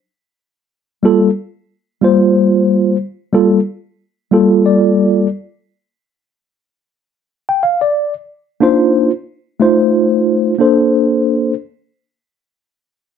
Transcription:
1.03 G3 A#3 F4 A4
2.01 G3 A#3 F4 C5
3.33 G3 A#3 F4 A4
4.31 G3 A#3 F4 A4
4.66 D5
7.49 G5
7.63 F5
7.81 D5
8.60 A#3 D4 D#4 F4 C5
9.60 A3 D#4 F4 C5
10.58 A#3 D4 A4 C5

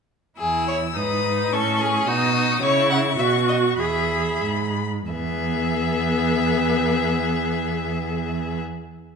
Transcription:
0.39 E2 E4 G#4 E6
0.68 C#5
0.95 G#2 D#4 B4 D#6
1.52 A2 C#4 A4 C#6
1.80 G#4
2.08 B2 D#4 F#4 D#6
2.35 D#4
2.62 C#3 E4 C#5 C#6
2.90 F#5
3.19 B2 F#4 E5
3.48 D#5
3.80 E2 G#4 E5 B5
4.44 G#2
5.12 E2 B3 G#4 E5

